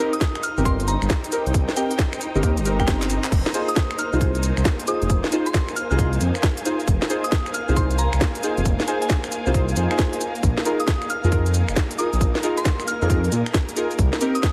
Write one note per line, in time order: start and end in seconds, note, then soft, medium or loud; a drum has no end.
0.00 0.14 C4 loud
0.00 0.14 D#4 medium
0.00 3.33 D#4 medium
0.00 10.20 D#4 medium
0.00 0.14 G4 medium
0.00 0.14 A#4 loud
0.00 0.65 A#4 medium
0.00 11.16 C5 medium
0.00 3.33 D#5 medium
0.00 1.21 F5 medium
0.13 0.42 D#6 medium
0.13 closed hi-hat medium
0.13 shaker soft
0.21 kick loud
0.21 snare loud
0.21 closed hi-hat medium
0.21 shaker soft
0.35 finger snap soft
0.35 shaker soft
0.43 0.60 F6 medium
0.43 closed hi-hat loud
0.43 shaker medium
0.57 0.96 G1 loud
0.57 0.63 C4 medium
0.57 0.63 D#4 medium
0.57 0.63 G4 medium
0.57 0.63 A#4 medium
0.57 shaker soft
0.65 0.76 C4 medium
0.65 0.76 D#4 medium
0.65 0.76 G4 medium
0.65 0.76 A#4 loud
0.65 0.86 C6 medium
0.65 kick loud
0.65 closed hi-hat medium
0.65 shaker soft
0.80 closed hi-hat medium
0.80 shaker soft
0.88 1.05 A#5 medium
0.88 closed hi-hat loud
0.88 shaker medium
0.94 3.32 G5 medium
1.02 1.08 G1 loud
1.02 finger snap medium
1.02 shaker soft
1.10 kick loud
1.10 snare loud
1.10 closed hi-hat medium
1.10 shaker soft
1.24 closed hi-hat medium
1.24 shaker soft
1.32 1.43 C4 medium
1.32 1.43 D#4 medium
1.32 1.43 G4 medium
1.32 1.43 A#4 loud
1.32 closed hi-hat loud
1.32 shaker medium
1.39 4.56 A#5 medium
1.46 1.52 C2 loud
1.46 closed hi-hat soft
1.46 shaker soft
1.54 1.65 C2 loud
1.54 kick loud
1.54 closed hi-hat medium
1.54 shaker soft
1.69 snare medium
1.69 shaker soft
1.77 1.92 C4 loud
1.77 1.92 D#4 loud
1.77 1.92 G4 medium
1.77 1.92 A#4 loud
1.77 1.86 G5 medium
1.77 closed hi-hat loud
1.77 shaker medium
1.91 1.96 G5 medium
1.91 closed hi-hat medium
1.91 shaker soft
1.99 kick loud
1.99 snare loud
1.99 closed hi-hat medium
1.99 shaker soft
2.13 finger snap medium
2.13 shaker soft
2.21 closed hi-hat loud
2.21 shaker medium
2.35 2.43 G1 loud
2.35 2.41 C4 medium
2.35 2.41 D#4 medium
2.35 2.41 G4 medium
2.35 2.41 A#4 medium
2.35 shaker soft
2.43 2.59 D#2 loud
2.43 2.54 C4 medium
2.43 2.54 D#4 medium
2.43 2.54 G4 medium
2.43 2.54 A#4 medium
2.43 kick loud
2.43 closed hi-hat medium
2.43 shaker soft
2.57 3.18 G1 medium
2.57 closed hi-hat medium
2.57 shaker soft
2.65 2.78 C4 medium
2.65 2.78 D#4 medium
2.65 2.78 G4 medium
2.65 2.78 A#4 loud
2.65 closed hi-hat loud
2.65 shaker medium
2.80 3.31 C4 loud
2.80 3.31 D#4 medium
2.80 3.31 G4 medium
2.80 3.31 A#4 loud
2.80 3.10 G5 medium
2.80 finger snap medium
2.80 kick medium
2.80 shaker soft
2.88 kick loud
2.88 snare loud
2.88 closed hi-hat medium
2.88 shaker soft
3.02 clap medium
3.02 closed hi-hat medium
3.02 shaker soft
3.10 closed hi-hat loud
3.10 shaker medium
3.24 clap loud
3.24 closed hi-hat soft
3.24 shaker soft
3.32 3.42 F1 loud
3.32 14.52 A#3 medium
3.32 14.52 A#4 medium
3.32 kick loud
3.32 closed hi-hat medium
3.32 crash medium
3.32 shaker soft
3.46 snare medium
3.46 shaker soft
3.54 3.70 D#4 loud
3.54 3.70 F4 medium
3.54 3.70 G#4 medium
3.54 3.70 C5 loud
3.54 closed hi-hat loud
3.54 shaker medium
3.68 3.97 D#6 medium
3.68 closed hi-hat medium
3.68 shaker soft
3.76 kick loud
3.76 snare loud
3.76 closed hi-hat medium
3.76 shaker soft
3.91 finger snap medium
3.91 shaker soft
3.99 4.16 F6 medium
3.99 closed hi-hat loud
3.99 shaker medium
4.13 4.51 C2 loud
4.13 4.19 D#4 medium
4.13 4.19 F4 medium
4.13 4.19 G#4 medium
4.13 4.19 C5 medium
4.13 shaker soft
4.18 4.31 D#4 medium
4.18 4.31 F4 medium
4.18 4.31 G#4 medium
4.18 4.31 C5 loud
4.18 13.99 G#5 medium
4.18 kick loud
4.18 closed hi-hat medium
4.18 shaker soft
4.35 closed hi-hat medium
4.35 shaker soft
4.43 closed hi-hat loud
4.43 shaker medium
4.57 4.63 C2 loud
4.57 finger snap medium
4.57 shaker soft
4.64 14.52 F5 medium
4.64 kick loud
4.64 snare loud
4.64 closed hi-hat medium
4.64 shaker soft
4.79 closed hi-hat medium
4.79 shaker soft
4.87 4.98 D#4 medium
4.87 4.98 F4 medium
4.87 4.98 G#4 medium
4.87 4.98 C5 loud
4.87 5.05 D#6 medium
4.87 closed hi-hat loud
4.87 shaker medium
5.02 5.08 F1 loud
5.02 closed hi-hat soft
5.02 shaker soft
5.10 5.20 F1 loud
5.10 kick loud
5.10 closed hi-hat medium
5.10 shaker soft
5.24 snare medium
5.24 shaker soft
5.32 5.48 D#4 loud
5.32 5.48 F4 loud
5.32 5.48 G#4 medium
5.32 5.48 C5 loud
5.32 closed hi-hat loud
5.32 shaker medium
5.46 5.59 C6 loud
5.46 closed hi-hat medium
5.46 shaker soft
5.54 kick loud
5.54 snare loud
5.54 closed hi-hat medium
5.54 shaker soft
5.69 finger snap medium
5.69 shaker soft
5.76 5.85 F6 medium
5.76 closed hi-hat loud
5.76 shaker medium
5.90 6.18 C2 loud
5.90 5.97 D#4 medium
5.90 5.97 F4 medium
5.90 5.97 G#4 medium
5.90 5.97 C5 medium
5.90 5.96 F6 medium
5.90 shaker soft
5.99 6.09 D#4 medium
5.99 6.09 F4 medium
5.99 6.09 G#4 medium
5.99 6.09 C5 medium
5.99 kick loud
5.99 closed hi-hat medium
5.99 shaker soft
6.13 closed hi-hat soft
6.13 shaker soft
6.21 6.31 F2 loud
6.21 closed hi-hat loud
6.21 shaker medium
6.35 finger snap medium
6.35 shaker soft
6.43 kick loud
6.43 snare loud
6.43 closed hi-hat medium
6.43 shaker soft
6.57 closed hi-hat medium
6.57 shaker soft
6.65 6.76 D#4 medium
6.65 6.76 F4 medium
6.65 6.76 G#4 medium
6.65 6.76 C5 loud
6.65 closed hi-hat loud
6.65 shaker medium
6.80 closed hi-hat soft
6.80 shaker soft
6.88 6.98 F1 loud
6.88 kick loud
6.88 closed hi-hat medium
6.88 shaker soft
7.02 snare medium
7.02 shaker soft
7.10 7.25 D#4 loud
7.10 7.25 F4 medium
7.10 7.25 G#4 medium
7.10 7.25 C5 loud
7.10 closed hi-hat loud
7.10 shaker medium
7.24 7.53 D#6 medium
7.24 closed hi-hat medium
7.24 shaker soft
7.32 kick loud
7.32 snare loud
7.32 closed hi-hat medium
7.32 shaker soft
7.46 finger snap medium
7.46 shaker soft
7.54 7.71 F6 medium
7.54 closed hi-hat loud
7.54 shaker medium
7.68 8.07 C2 loud
7.68 7.74 D#4 medium
7.68 7.74 F4 medium
7.68 7.74 G#4 medium
7.68 7.74 C5 medium
7.68 shaker soft
7.76 7.87 D#4 medium
7.76 7.87 F4 medium
7.76 7.87 G#4 medium
7.76 7.87 C5 medium
7.76 7.97 C6 medium
7.76 kick loud
7.76 closed hi-hat medium
7.76 shaker soft
7.91 closed hi-hat medium
7.91 shaker soft
7.98 8.16 A#5 medium
7.98 closed hi-hat loud
7.98 shaker medium
8.13 8.19 C2 loud
8.13 finger snap medium
8.13 shaker soft
8.21 kick loud
8.21 snare loud
8.21 closed hi-hat medium
8.21 shaker soft
8.35 closed hi-hat medium
8.35 shaker soft
8.43 8.54 D#4 medium
8.43 8.54 F4 medium
8.43 8.54 G#4 medium
8.43 8.54 C5 loud
8.43 closed hi-hat loud
8.43 shaker medium
8.57 8.63 F1 loud
8.57 closed hi-hat soft
8.57 shaker soft
8.65 8.76 F1 loud
8.65 kick loud
8.65 closed hi-hat medium
8.65 shaker soft
8.80 snare medium
8.80 shaker soft
8.88 9.03 D#4 loud
8.88 9.03 F4 medium
8.88 9.03 G#4 medium
8.88 9.03 C5 loud
8.88 8.97 G#5 medium
8.88 closed hi-hat loud
8.88 shaker medium
9.02 9.07 G#5 medium
9.02 closed hi-hat medium
9.02 shaker soft
9.10 kick loud
9.10 snare loud
9.10 closed hi-hat medium
9.10 shaker soft
9.24 finger snap medium
9.24 shaker soft
9.32 closed hi-hat loud
9.32 shaker medium
9.46 9.73 C2 loud
9.46 9.52 D#4 medium
9.46 9.52 F4 medium
9.46 9.52 G#4 medium
9.46 9.52 C5 medium
9.46 shaker soft
9.54 9.65 D#4 medium
9.54 9.65 F4 medium
9.54 9.65 G#4 medium
9.54 9.65 C5 loud
9.54 kick loud
9.54 closed hi-hat medium
9.54 shaker soft
9.69 closed hi-hat soft
9.69 shaker soft
9.76 9.87 F2 loud
9.76 9.89 D#4 medium
9.76 9.89 F4 medium
9.76 9.89 G#4 medium
9.76 9.89 C5 medium
9.76 closed hi-hat loud
9.76 shaker medium
9.91 10.20 D#4 loud
9.91 10.20 F4 medium
9.91 10.20 G#4 loud
9.91 10.20 C5 loud
9.91 10.21 G#5 medium
9.91 finger snap soft
9.91 shaker soft
9.99 kick loud
9.99 snare loud
9.99 closed hi-hat medium
9.99 shaker soft
10.13 closed hi-hat medium
10.13 shaker soft
10.21 14.52 D#4 medium
10.21 closed hi-hat loud
10.21 shaker medium
10.35 closed hi-hat soft
10.35 shaker soft
10.43 10.54 A#1 loud
10.43 kick loud
10.43 closed hi-hat medium
10.43 shaker soft
10.58 snare medium
10.58 shaker soft
10.65 10.81 D#4 loud
10.65 10.81 F4 medium
10.65 10.81 G#4 loud
10.65 10.81 A#4 loud
10.65 closed hi-hat loud
10.65 shaker medium
10.71 14.52 A#4 medium
10.80 11.08 D#6 medium
10.80 closed hi-hat medium
10.80 shaker soft
10.88 kick loud
10.88 snare loud
10.88 closed hi-hat medium
10.88 shaker soft
11.02 finger snap soft
11.02 shaker soft
11.10 11.27 F6 loud
11.10 closed hi-hat loud
11.10 shaker medium
11.24 11.62 F2 loud
11.24 11.30 D#4 medium
11.24 11.30 F4 medium
11.24 11.30 G#4 medium
11.24 11.30 A#4 medium
11.24 shaker soft
11.32 11.43 D#4 medium
11.32 11.43 F4 medium
11.32 11.43 G#4 medium
11.32 11.43 A#4 medium
11.32 kick loud
11.32 closed hi-hat medium
11.32 shaker soft
11.46 closed hi-hat medium
11.46 shaker soft
11.54 closed hi-hat loud
11.54 shaker medium
11.68 11.74 F1 loud
11.68 finger snap soft
11.68 shaker soft
11.76 kick loud
11.76 snare loud
11.76 closed hi-hat medium
11.76 shaker soft
11.91 closed hi-hat medium
11.91 shaker soft
11.98 12.09 D#4 medium
11.98 12.09 F4 medium
11.98 12.09 G#4 medium
11.98 12.09 A#4 loud
11.98 12.16 D#6 medium
11.98 closed hi-hat loud
11.98 shaker medium
12.13 12.19 A#1 loud
12.13 closed hi-hat soft
12.13 shaker soft
12.21 12.31 A#1 loud
12.21 kick loud
12.21 closed hi-hat medium
12.21 shaker soft
12.35 snare medium
12.35 shaker soft
12.43 12.59 D#4 loud
12.43 12.59 F4 loud
12.43 12.59 G#4 loud
12.43 12.59 A#4 loud
12.43 closed hi-hat loud
12.43 shaker medium
12.57 12.70 C6 medium
12.57 closed hi-hat medium
12.57 shaker soft
12.65 kick loud
12.65 snare loud
12.65 closed hi-hat medium
12.65 shaker soft
12.80 finger snap soft
12.80 shaker soft
12.88 12.97 F6 medium
12.88 closed hi-hat loud
12.88 shaker medium
13.02 13.29 F2 loud
13.02 13.08 D#4 medium
13.02 13.08 F4 medium
13.02 13.08 G#4 medium
13.02 13.08 A#4 medium
13.02 13.07 F6 medium
13.02 shaker soft
13.10 13.20 D#4 medium
13.10 13.20 F4 medium
13.10 13.20 G#4 medium
13.10 13.20 A#4 medium
13.10 kick loud
13.10 closed hi-hat medium
13.10 shaker soft
13.24 closed hi-hat soft
13.24 shaker soft
13.32 13.43 A#2 loud
13.32 closed hi-hat loud
13.32 shaker medium
13.46 finger snap medium
13.46 shaker soft
13.54 kick loud
13.54 snare loud
13.54 closed hi-hat medium
13.54 shaker soft
13.69 closed hi-hat medium
13.69 shaker soft
13.77 13.87 D#4 medium
13.77 13.87 F4 medium
13.77 13.87 G#4 medium
13.77 13.87 A#4 loud
13.77 closed hi-hat loud
13.77 shaker medium
13.91 closed hi-hat soft
13.91 shaker soft
13.99 14.09 C2 loud
13.99 14.52 C4 medium
13.99 kick loud
13.99 closed hi-hat medium
13.99 shaker soft
14.13 snare medium
14.13 shaker soft
14.21 14.37 C4 loud
14.21 14.37 D#4 medium
14.21 14.37 G4 medium
14.21 14.37 A#4 loud
14.21 closed hi-hat loud
14.21 shaker medium
14.35 14.52 D#6 medium
14.35 closed hi-hat medium
14.35 shaker soft
14.43 kick loud
14.43 snare loud
14.43 closed hi-hat medium
14.43 shaker soft